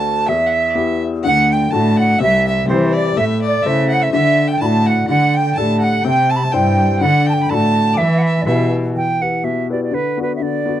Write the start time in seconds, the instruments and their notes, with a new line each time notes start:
Already playing: upright piano D2 A3 D4 F#4, fiddle A5, flute A5
0.26 upright piano E2, fiddle E5, flute E5
0.46 fiddle F#5
0.52 fiddle E5
0.70 fiddle D5
0.75 upright piano B3 E4 G4, fiddle E5
1.23 cello D2, upright piano D3, fiddle F#5, flute F#5
1.50 fiddle G5, flute G5
1.71 cello A2, upright piano A3 D4 F#4, fiddle A5, flute A5
1.96 fiddle F#5, flute F#5
2.19 cello C2, upright piano C3, fiddle E5
2.23 flute E5
2.46 fiddle E5, flute E5
2.68 cello E3, upright piano C4 E4 G4, fiddle C5, flute C5
2.92 fiddle D5, flute D5
3.16 cello A2, upright piano A3, fiddle E5, flute E5
3.42 fiddle D5
3.47 flute D5
3.62 cello C#3, upright piano E4 A4 C5, fiddle E5
3.67 flute E5
3.89 fiddle F#5
3.93 flute F#5
4.02 fiddle E5, flute E5
4.12 cello D3, upright piano D3, fiddle E5, flute E5
4.48 fiddle G5
4.52 flute G5
4.59 cello A2, upright piano D4 E4 F#4, fiddle A5, flute B5
4.66 flute A5
4.86 fiddle F#5, flute F#5
5.07 cello D3, upright piano D3, fiddle F#5, flute F#5
5.34 fiddle G5, flute G5
5.55 cello A2, upright piano D4 G4 A4, fiddle A5, flute A5
5.80 fiddle F#5, flute F#5
6.03 cello C3, upright piano C3, fiddle G5, flute G5
6.29 fiddle A5, flute A5
6.36 flute B5
6.44 flute A5
6.52 cello G2, upright piano D4 E4 C5, fiddle G5, flute G5
6.99 upright piano D3, cello D3, fiddle F#5, flute F#5
7.26 fiddle G5, flute A5
7.34 flute G5
7.43 fiddle B5
7.49 cello A2, upright piano D4 F#4 A4, fiddle A5, flute B5
7.54 flute A5
7.93 upright piano E3, fiddle D5, flute E5
7.99 cello E3, fiddle E5
8.18 flute E5 F#5
8.26 fiddle E5
8.42 flute D5 E5
8.46 cello B2, upright piano E4 G4 B4, fiddle E5
8.95 upright piano E3, flute G5
9.21 upright piano E4 G4 B4, flute F#5
9.44 upright piano B2, flute E5
9.70 upright piano E4 G4 B4, flute D5
9.83 flute D5
9.91 upright piano D3, flute B4
10.17 upright piano B3 D4 F#4
10.22 flute B4
10.36 upright piano D3, flute E5
10.42 flute D5
10.65 upright piano B3 D4 F#4